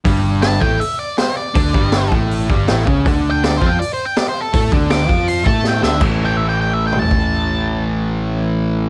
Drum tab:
CC |----------------|----------------|----------------|----------------|
HH |o---o---o---o---|o---o---o---o---|o---o---o---o---|o---o---o-------|
SD |----o-------o---|----o-------o---|----o-------o---|----o-------o-o-|
T2 |----------------|----------------|----------------|----------------|
FT |----------------|----------------|----------------|----------------|
BD |o-----o---------|o-o---o---o---o-|o-----o---------|o-o---o---o-----|

CC |x---------------|----------------|
HH |----------------|----------------|
SD |----------------|----------------|
T2 |----------o-----|----------------|
FT |-----------o----|----------------|
BD |o-----------o---|----------------|